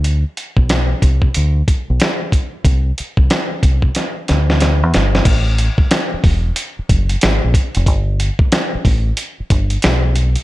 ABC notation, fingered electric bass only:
X:1
M:4/4
L:1/16
Q:"Swing 16ths" 1/4=92
K:Ador
V:1 name="Fingered electric bass" clef=bass
D,,2 z B,,,3 C,,2 D,,2 z B,,, z4 | C,,2 z C,, z2 C,,2 z2 D,,3 E,, G,,,2 | A,,,3 z3 E,,,2 z2 F,,,2 ^G,,, ^A,,, z =F,,, | G,,,3 z3 A,,,2 z2 G,,,2 B,,,4 |]